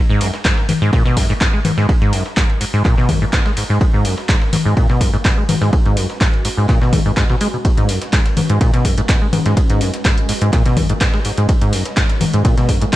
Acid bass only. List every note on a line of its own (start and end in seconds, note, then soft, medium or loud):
0.10 0.22 G#2 loud
0.21 0.31 F#2 loud
0.45 0.52 G#2 medium
0.69 0.73 G#2 medium
0.82 0.91 G#2 loud
0.93 1.03 A#2 loud
1.05 1.18 B2 loud
1.17 1.27 F#2 loud
1.30 1.33 G#2 loud
1.41 1.48 G#2 medium
1.53 1.60 G#3 medium
1.65 1.72 G#2 medium
1.77 1.87 G#2 loud
2.01 2.14 G#2 loud
2.13 2.23 F#2 loud
2.37 2.44 G#2 medium
2.61 2.65 G#2 medium
2.73 2.83 G#2 loud
2.85 2.95 A#2 loud
2.98 3.10 B2 loud
3.09 3.19 F#2 loud
3.22 3.25 G#2 loud
3.33 3.40 G#2 medium
3.45 3.52 G#3 medium
3.57 3.64 G#2 medium
3.70 3.79 G#2 loud
3.94 4.06 G#2 loud
4.05 4.15 F#2 loud
4.29 4.36 G#2 medium
4.53 4.57 G#2 medium
4.65 4.75 G#2 loud
4.77 4.87 A#2 loud
4.89 5.02 B2 loud
5.01 5.11 F#2 loud
5.13 5.17 G#2 loud
5.25 5.32 G#2 medium
5.37 5.44 G#3 medium
5.49 5.56 G#2 medium
5.61 5.71 G#2 loud
5.85 5.98 G#2 loud
5.97 6.07 F#2 loud
6.21 6.28 G#2 medium
6.45 6.49 G#2 medium
6.57 6.67 G#2 loud
6.69 6.79 A#2 loud
6.82 6.94 B2 loud
6.93 7.00 G#2 loud
7.06 7.12 G#2 loud
7.17 7.24 G#2 loud
7.30 7.36 B2 loud
7.41 7.48 G#3 loud
7.54 7.57 B2 medium
7.65 7.69 G#2 medium
7.78 7.90 G#2 loud
7.89 7.99 F#2 loud
8.13 8.20 G#2 medium
8.37 8.41 G#2 medium
8.50 8.59 G#2 loud
8.61 8.71 A#2 loud
8.74 8.86 B2 loud
8.85 8.95 F#2 loud
8.98 9.01 G#2 loud
9.09 9.16 G#2 medium
9.22 9.28 G#3 medium
9.33 9.40 G#2 medium
9.46 9.55 G#2 loud
9.70 9.83 G#2 loud
9.81 9.91 F#2 loud
10.05 10.12 G#2 medium
10.29 10.33 G#2 medium
10.41 10.51 G#2 loud
10.53 10.63 A#2 loud
10.66 10.78 B2 loud
10.77 10.87 F#2 loud
10.90 10.93 G#2 loud
11.01 11.08 G#2 medium
11.14 11.20 G#3 medium
11.25 11.32 G#2 medium
11.38 11.47 G#2 loud
11.62 11.74 G#2 loud
11.73 11.83 F#2 loud
11.97 12.04 G#2 medium
12.21 12.25 G#2 medium
12.34 12.43 G#2 loud
12.45 12.55 A#2 loud
12.57 12.70 B2 loud
12.69 12.79 F#2 loud
12.81 12.85 G#2 loud
12.93 12.96 G#2 medium